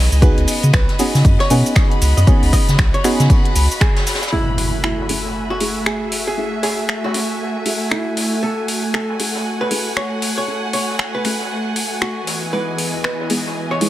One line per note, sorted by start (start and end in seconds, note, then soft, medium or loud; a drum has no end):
0.00 0.22 E3 medium
0.00 0.20 G#3 loud
0.00 0.20 B3 medium
0.00 0.20 D#4 medium
0.00 0.20 E4 medium
0.00 0.20 G#4 loud
0.00 0.15 B4 medium
0.00 4.32 D#5 medium
0.00 0.86 G#5 medium
0.12 0.32 C#2 medium
0.12 cabasa soft
0.22 0.97 B3 medium
0.22 0.97 C#4 medium
0.22 0.97 D#4 medium
0.22 13.79 F#4 medium
0.22 0.97 F#4 medium
0.22 0.97 G#4 medium
0.22 0.66 B4 loud
0.22 kick loud
0.22 closed hi-hat medium
0.22 ride medium
0.22 cabasa soft
0.38 0.46 C#2 loud
0.38 6.03 B5 medium
0.38 closed hi-hat medium
0.48 open hi-hat loud
0.48 ride medium
0.48 cabasa medium
0.63 0.71 C#3 medium
0.63 closed hi-hat soft
0.63 cabasa soft
0.73 0.86 B1 medium
0.73 0.96 B4 medium
0.73 finger snap loud
0.73 kick loud
0.73 snare loud
0.73 closed hi-hat medium
0.73 cabasa soft
0.89 snare medium
0.89 closed hi-hat medium
0.98 1.48 B3 medium
0.98 1.48 C#4 medium
0.98 1.48 D#4 medium
0.98 1.48 F#4 medium
0.98 1.48 G#4 loud
0.98 open hi-hat loud
0.98 ride medium
0.98 cabasa medium
1.15 1.23 C#3 loud
1.15 snare soft
1.15 cabasa soft
1.25 1.37 F#2 loud
1.25 kick loud
1.25 closed hi-hat medium
1.25 open hi-hat medium
1.25 cabasa soft
1.40 1.71 C#5 loud
1.40 snare medium
1.40 closed hi-hat medium
1.50 1.63 B2 medium
1.50 2.25 B3 loud
1.50 2.25 C#4 medium
1.50 2.25 D#4 medium
1.50 2.25 F#4 medium
1.50 2.25 G#4 loud
1.50 open hi-hat loud
1.50 ride medium
1.50 cabasa medium
1.66 cabasa soft
1.75 2.09 D#5 medium
1.75 finger snap loud
1.75 kick loud
1.75 snare loud
1.75 closed hi-hat medium
1.75 ride medium
1.75 cabasa soft
1.92 closed hi-hat medium
2.02 2.14 C#2 medium
2.02 open hi-hat loud
2.02 ride medium
2.02 cabasa medium
2.17 2.25 F#2 loud
2.17 2.48 D#5 loud
2.17 cabasa soft
2.27 3.02 B3 medium
2.27 3.02 C#4 medium
2.27 3.02 D#4 medium
2.27 3.02 F#4 medium
2.27 3.02 G#4 medium
2.27 kick loud
2.27 closed hi-hat medium
2.27 ride medium
2.27 cabasa soft
2.43 2.51 C#2 loud
2.43 open hi-hat medium
2.53 2.86 D#5 medium
2.53 kick medium
2.53 open hi-hat loud
2.53 ride medium
2.53 cabasa medium
2.68 2.77 C#3 medium
2.68 snare soft
2.68 closed hi-hat soft
2.68 cabasa soft
2.79 2.91 B1 medium
2.79 finger snap loud
2.79 kick loud
2.79 snare loud
2.79 closed hi-hat medium
2.79 cabasa soft
2.94 3.35 C#5 loud
2.94 closed hi-hat medium
2.94 ride soft
3.04 3.53 B3 medium
3.04 3.53 C#4 medium
3.04 3.53 D#4 medium
3.04 3.53 F#4 medium
3.04 3.53 G#4 loud
3.04 finger snap soft
3.04 open hi-hat loud
3.04 ride medium
3.04 cabasa medium
3.20 3.28 C#3 loud
3.20 snare soft
3.20 closed hi-hat soft
3.20 cabasa soft
3.30 kick loud
3.30 closed hi-hat medium
3.30 ride medium
3.30 cabasa soft
3.45 closed hi-hat medium
3.55 3.68 C#2 medium
3.55 open hi-hat loud
3.55 ride medium
3.55 cabasa medium
3.71 cabasa soft
3.81 4.25 G#4 medium
3.81 finger snap loud
3.81 kick loud
3.81 snare loud
3.81 closed hi-hat medium
3.81 ride medium
3.81 cabasa soft
3.96 snare loud
3.96 closed hi-hat medium
3.96 ride medium
4.07 snare medium
4.07 open hi-hat loud
4.07 ride medium
4.07 cabasa medium
4.14 snare medium
4.14 ride medium
4.22 snare medium
4.22 ride medium
4.22 cabasa soft
4.27 snare medium
4.27 ride medium
4.32 5.07 A3 medium
4.32 12.23 A3 medium
4.32 5.07 C#4 medium
4.32 5.07 E4 medium
4.32 4.77 E4 medium
4.32 5.07 F#4 medium
4.32 12.23 F#4 medium
4.32 5.07 G#4 medium
4.32 8.39 E5 medium
4.32 12.23 G#5 medium
4.32 ride medium
4.32 impact medium
4.46 12.27 A3 medium
4.57 13.89 G#5 medium
4.57 open hi-hat loud
4.57 ride medium
4.80 5.06 E4 medium
4.80 9.24 E5 medium
4.80 finger snap loud
4.80 ride medium
4.99 snare soft
5.09 5.58 A3 medium
5.09 5.58 C#4 medium
5.09 5.58 E4 medium
5.09 5.58 F#4 medium
5.09 5.58 G#4 medium
5.09 open hi-hat loud
5.09 ride medium
5.25 snare soft
5.34 open hi-hat medium
5.50 5.81 F#4 medium
5.50 snare soft
5.60 6.35 A3 medium
5.60 6.35 C#4 medium
5.60 6.35 E4 medium
5.60 6.35 F#4 medium
5.60 6.35 G#4 loud
5.60 open hi-hat loud
5.60 ride medium
5.86 6.19 G#4 medium
5.86 finger snap loud
6.12 open hi-hat loud
6.12 ride medium
6.27 6.58 G#4 medium
6.37 7.12 A3 medium
6.37 7.12 C#4 medium
6.37 7.12 E4 medium
6.37 7.12 F#4 medium
6.37 7.12 G#4 medium
6.37 ride medium
6.62 6.96 G#4 medium
6.62 snare medium
6.62 open hi-hat loud
6.62 ride medium
6.89 finger snap loud
7.04 7.45 F#4 medium
7.04 snare loud
7.04 ride medium
7.14 7.63 A3 medium
7.14 7.63 C#4 medium
7.14 7.63 E4 medium
7.14 7.63 F#4 medium
7.14 7.63 G#4 loud
7.14 open hi-hat loud
7.29 ride medium
7.40 ride medium
7.65 8.40 A3 medium
7.65 8.40 C#4 medium
7.65 8.40 E4 medium
7.65 8.40 F#4 medium
7.65 8.40 G#4 loud
7.65 open hi-hat loud
7.65 ride medium
7.91 8.36 E4 medium
7.91 finger snap loud
8.16 snare soft
8.16 open hi-hat loud
8.16 ride medium
8.42 9.17 A3 medium
8.42 9.17 C#4 medium
8.42 9.17 E4 medium
8.42 9.17 F#4 medium
8.42 8.87 A4 medium
8.42 9.17 A4 medium
8.42 12.23 F#5 medium
8.42 ride medium
8.68 open hi-hat loud
8.68 ride medium
8.94 9.16 A4 medium
8.94 finger snap loud
9.10 13.27 F#5 medium
9.10 snare soft
9.19 9.68 A3 medium
9.19 9.68 C#4 medium
9.19 9.68 E4 medium
9.19 9.68 F#4 medium
9.19 9.68 G#4 medium
9.19 open hi-hat loud
9.19 ride medium
9.35 snare soft
9.45 open hi-hat medium
9.61 9.91 B4 medium
9.61 snare medium
9.71 10.45 A3 loud
9.71 10.45 C#4 medium
9.71 10.45 E4 medium
9.71 10.45 F#4 medium
9.71 10.45 G#4 loud
9.71 open hi-hat loud
9.71 ride medium
9.97 10.30 C#5 medium
9.97 finger snap loud
10.22 open hi-hat loud
10.22 ride medium
10.38 10.68 C#5 medium
10.48 11.22 A3 medium
10.48 11.22 C#4 medium
10.48 11.22 E4 medium
10.48 11.22 F#4 medium
10.48 11.22 G#4 medium
10.48 ride medium
10.73 11.07 C#5 medium
10.73 open hi-hat loud
10.73 ride medium
10.90 snare soft
10.98 finger snap loud
10.98 ride medium
11.15 11.55 B4 medium
11.15 ride soft
11.24 11.74 A3 medium
11.24 11.74 C#4 medium
11.24 11.74 E4 medium
11.24 11.74 F#4 medium
11.24 11.74 G#4 loud
11.24 finger snap soft
11.24 open hi-hat loud
11.24 ride medium
11.40 snare soft
11.50 ride medium
11.76 open hi-hat loud
11.76 ride medium
12.02 12.46 F#4 medium
12.02 finger snap loud
12.02 ride medium
12.27 13.89 E3 medium
12.27 13.89 B3 medium
12.27 13.89 G#4 medium
12.27 13.89 D#5 medium
12.27 snare soft
12.27 open hi-hat loud
12.27 ride medium
12.53 13.27 G#3 medium
12.53 13.27 B3 medium
12.53 13.27 D#4 medium
12.53 13.27 E4 medium
12.53 13.27 G#4 medium
12.53 12.97 B4 medium
12.53 ride medium
12.62 13.89 D#5 medium
12.78 open hi-hat loud
12.78 ride medium
13.04 13.26 B4 medium
13.04 finger snap loud
13.20 snare soft
13.30 13.79 G#3 medium
13.30 13.79 B3 medium
13.30 13.79 D#4 medium
13.30 13.79 E4 medium
13.30 13.79 G#4 loud
13.30 open hi-hat loud
13.30 ride medium
13.46 snare soft
13.56 open hi-hat medium
13.70 13.89 C#5 medium
13.70 snare soft
13.81 13.89 G#3 loud
13.81 13.89 B3 medium
13.81 13.89 D#4 medium
13.81 13.89 E4 medium
13.81 13.89 G#4 loud
13.81 open hi-hat loud
13.81 ride medium